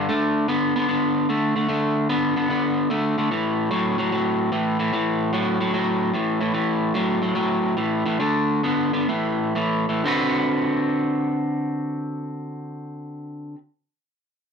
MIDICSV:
0, 0, Header, 1, 2, 480
1, 0, Start_track
1, 0, Tempo, 404313
1, 90, Time_signature, 4, 2, 24, 8
1, 8250, Tempo, 421941
1, 10170, Tempo, 470958
1, 11610, Tempo, 502513
1, 15886, End_track
2, 0, Start_track
2, 0, Title_t, "Clean electric guitar"
2, 0, Program_c, 0, 27
2, 104, Note_on_c, 0, 50, 74
2, 109, Note_on_c, 0, 57, 88
2, 546, Note_off_c, 0, 50, 0
2, 549, Note_off_c, 0, 57, 0
2, 574, Note_on_c, 0, 50, 87
2, 577, Note_on_c, 0, 59, 91
2, 864, Note_off_c, 0, 50, 0
2, 865, Note_off_c, 0, 59, 0
2, 900, Note_on_c, 0, 50, 79
2, 902, Note_on_c, 0, 59, 88
2, 1033, Note_off_c, 0, 50, 0
2, 1040, Note_off_c, 0, 59, 0
2, 1047, Note_on_c, 0, 50, 84
2, 1052, Note_on_c, 0, 59, 84
2, 1498, Note_off_c, 0, 50, 0
2, 1501, Note_off_c, 0, 59, 0
2, 1532, Note_on_c, 0, 50, 73
2, 1538, Note_on_c, 0, 57, 89
2, 1823, Note_off_c, 0, 50, 0
2, 1826, Note_off_c, 0, 57, 0
2, 1845, Note_on_c, 0, 50, 68
2, 1853, Note_on_c, 0, 57, 75
2, 1986, Note_off_c, 0, 50, 0
2, 1992, Note_off_c, 0, 57, 0
2, 2001, Note_on_c, 0, 50, 73
2, 2006, Note_on_c, 0, 57, 88
2, 2456, Note_off_c, 0, 50, 0
2, 2458, Note_off_c, 0, 57, 0
2, 2486, Note_on_c, 0, 50, 86
2, 2486, Note_on_c, 0, 59, 94
2, 2780, Note_off_c, 0, 50, 0
2, 2781, Note_off_c, 0, 59, 0
2, 2805, Note_on_c, 0, 50, 74
2, 2809, Note_on_c, 0, 59, 82
2, 2947, Note_off_c, 0, 50, 0
2, 2954, Note_off_c, 0, 59, 0
2, 2961, Note_on_c, 0, 50, 76
2, 2969, Note_on_c, 0, 59, 88
2, 3416, Note_off_c, 0, 50, 0
2, 3420, Note_off_c, 0, 59, 0
2, 3444, Note_on_c, 0, 50, 70
2, 3452, Note_on_c, 0, 57, 74
2, 3739, Note_off_c, 0, 50, 0
2, 3743, Note_off_c, 0, 57, 0
2, 3774, Note_on_c, 0, 50, 69
2, 3780, Note_on_c, 0, 57, 77
2, 3916, Note_off_c, 0, 50, 0
2, 3920, Note_off_c, 0, 57, 0
2, 3930, Note_on_c, 0, 45, 77
2, 3937, Note_on_c, 0, 52, 85
2, 4380, Note_off_c, 0, 45, 0
2, 4384, Note_off_c, 0, 52, 0
2, 4403, Note_on_c, 0, 45, 85
2, 4405, Note_on_c, 0, 54, 85
2, 4699, Note_off_c, 0, 45, 0
2, 4699, Note_off_c, 0, 54, 0
2, 4725, Note_on_c, 0, 45, 71
2, 4730, Note_on_c, 0, 54, 86
2, 4872, Note_off_c, 0, 45, 0
2, 4874, Note_off_c, 0, 54, 0
2, 4886, Note_on_c, 0, 45, 77
2, 4893, Note_on_c, 0, 54, 84
2, 5338, Note_off_c, 0, 45, 0
2, 5341, Note_off_c, 0, 54, 0
2, 5365, Note_on_c, 0, 45, 75
2, 5370, Note_on_c, 0, 52, 81
2, 5659, Note_off_c, 0, 45, 0
2, 5662, Note_off_c, 0, 52, 0
2, 5689, Note_on_c, 0, 45, 75
2, 5694, Note_on_c, 0, 52, 83
2, 5833, Note_off_c, 0, 45, 0
2, 5836, Note_off_c, 0, 52, 0
2, 5850, Note_on_c, 0, 45, 75
2, 5856, Note_on_c, 0, 52, 94
2, 6299, Note_off_c, 0, 45, 0
2, 6302, Note_off_c, 0, 52, 0
2, 6326, Note_on_c, 0, 45, 77
2, 6332, Note_on_c, 0, 54, 99
2, 6619, Note_off_c, 0, 45, 0
2, 6621, Note_off_c, 0, 54, 0
2, 6653, Note_on_c, 0, 45, 74
2, 6658, Note_on_c, 0, 54, 83
2, 6791, Note_off_c, 0, 45, 0
2, 6797, Note_off_c, 0, 54, 0
2, 6805, Note_on_c, 0, 45, 72
2, 6815, Note_on_c, 0, 54, 92
2, 7255, Note_off_c, 0, 45, 0
2, 7260, Note_off_c, 0, 54, 0
2, 7285, Note_on_c, 0, 45, 76
2, 7296, Note_on_c, 0, 52, 82
2, 7577, Note_off_c, 0, 45, 0
2, 7582, Note_off_c, 0, 52, 0
2, 7604, Note_on_c, 0, 45, 80
2, 7610, Note_on_c, 0, 52, 80
2, 7748, Note_off_c, 0, 45, 0
2, 7751, Note_off_c, 0, 52, 0
2, 7762, Note_on_c, 0, 45, 73
2, 7769, Note_on_c, 0, 52, 91
2, 8213, Note_off_c, 0, 45, 0
2, 8217, Note_off_c, 0, 52, 0
2, 8242, Note_on_c, 0, 45, 84
2, 8251, Note_on_c, 0, 54, 102
2, 8526, Note_off_c, 0, 45, 0
2, 8530, Note_off_c, 0, 54, 0
2, 8556, Note_on_c, 0, 45, 77
2, 8564, Note_on_c, 0, 54, 80
2, 8692, Note_off_c, 0, 45, 0
2, 8695, Note_off_c, 0, 54, 0
2, 8705, Note_on_c, 0, 45, 78
2, 8709, Note_on_c, 0, 54, 91
2, 9151, Note_off_c, 0, 45, 0
2, 9153, Note_off_c, 0, 54, 0
2, 9183, Note_on_c, 0, 45, 74
2, 9186, Note_on_c, 0, 52, 85
2, 9476, Note_off_c, 0, 45, 0
2, 9478, Note_off_c, 0, 52, 0
2, 9509, Note_on_c, 0, 45, 72
2, 9516, Note_on_c, 0, 52, 84
2, 9653, Note_off_c, 0, 45, 0
2, 9657, Note_off_c, 0, 52, 0
2, 9671, Note_on_c, 0, 50, 88
2, 9673, Note_on_c, 0, 57, 88
2, 10135, Note_off_c, 0, 50, 0
2, 10136, Note_off_c, 0, 57, 0
2, 10168, Note_on_c, 0, 50, 78
2, 10174, Note_on_c, 0, 59, 82
2, 10445, Note_off_c, 0, 50, 0
2, 10448, Note_off_c, 0, 59, 0
2, 10472, Note_on_c, 0, 50, 79
2, 10475, Note_on_c, 0, 59, 77
2, 10611, Note_off_c, 0, 50, 0
2, 10613, Note_off_c, 0, 59, 0
2, 10625, Note_on_c, 0, 45, 72
2, 10633, Note_on_c, 0, 52, 87
2, 11074, Note_off_c, 0, 45, 0
2, 11078, Note_off_c, 0, 52, 0
2, 11104, Note_on_c, 0, 45, 78
2, 11109, Note_on_c, 0, 52, 85
2, 11406, Note_off_c, 0, 45, 0
2, 11408, Note_off_c, 0, 52, 0
2, 11448, Note_on_c, 0, 45, 71
2, 11450, Note_on_c, 0, 52, 70
2, 11594, Note_off_c, 0, 45, 0
2, 11595, Note_off_c, 0, 52, 0
2, 11602, Note_on_c, 0, 50, 87
2, 11615, Note_on_c, 0, 60, 101
2, 11628, Note_on_c, 0, 66, 97
2, 11639, Note_on_c, 0, 71, 91
2, 14945, Note_off_c, 0, 50, 0
2, 14958, Note_off_c, 0, 60, 0
2, 14971, Note_off_c, 0, 66, 0
2, 14982, Note_off_c, 0, 71, 0
2, 15886, End_track
0, 0, End_of_file